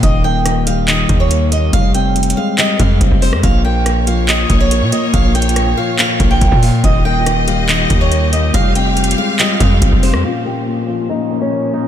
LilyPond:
<<
  \new Staff \with { instrumentName = "Steel-string acoustic guitar" } { \time 4/4 \key bes \dorian \tempo 4 = 141 ees''8 g''4 f''8 ees''8. des''8. ees''8 | f''8 g''4 f''8 ees''8 f''4 c''8 | f''8 g''4 f''8 ees''8. des''8. ees''8 | f''8 g''4 f''8 f''8. g''8. f''8 |
ees''8 g''4 f''8 ees''8. des''8. ees''8 | f''8 g''4 f''8 ees''8 f''4 c''8 | f'8 g'4 f'8 ees'8. des'8. ees'8 | }
  \new Staff \with { instrumentName = "String section" } { \time 4/4 \key bes \dorian r1 | r1 | <bes f' des''>1~ | <bes f' des''>1 |
<g' ees''>1 | <f' f''>1 | <bes, f des'>1 | }
  \new Staff \with { instrumentName = "Felt piano" } { \time 4/4 \key bes \dorian ees8 bes8 ees8 g8 ees8 bes8 bes8 bes8 | g8 c'8 g8 aes8 g8 c'8 c'8 c'8 | bes,8 bes8 bes,8 f8 bes,8 bes8 bes8 bes8 | bes,8 bes8 bes,8 f8 bes,8 bes8 bes8 bes8 |
ees8 bes8 ees8 g8 ees8 bes8 bes8 bes8 | g8 c'8 g8 aes8 g8 c'8 c'8 c'8 | bes,8 bes8 bes,8 f8 bes,8 bes8 bes8 bes8 | }
  \new Staff \with { instrumentName = "808-style bass" } { \clef bass \time 4/4 \key bes \dorian ees,,2~ ees,,8 ees,4. | f,,4. r4 f,8 f,,16 f,,8 f,16 | bes,,2~ bes,,8 bes,,8. bes,16 r8 | bes,,4. r4 bes,,8 bes,,16 bes,8. |
ees,,2~ ees,,8 ees,4. | f,,4. r4 f,8 f,,16 f,,8 f,16 | r1 | }
  \new DrumStaff \with { instrumentName = "Drums" } \drummode { \time 4/4 <hh bd>4 <hh ss>8 hh8 <hc hh>8 <hh bd>8 hh8 hh8 | <hh bd>8 hh8 \tuplet 3/2 { hh16 hh16 hh16 r16 r16 r16 } <hc hh>8 <hh bd>8 <hh bd>16 bd16 hho16 ss16 | <hh bd>4 <hh ss>8 hh8 <hc hh>8 <hh bd>8 hh8 hh8 | \tuplet 3/2 { <hh bd>16 r16 r16 hh16 hh16 hh16 } <hh ss>4 <hc hh>8 <hh bd>8 <hh bd>16 bd16 hho8 |
<hh bd>4 <hh ss>8 hh8 <hc hh>8 <hh bd>8 hh8 hh8 | <hh bd>8 hh8 \tuplet 3/2 { hh16 hh16 hh16 r16 r16 r16 } <hc hh>8 <hh bd>8 <hh bd>16 bd16 hho16 ss16 | r4 r4 r4 r4 | }
>>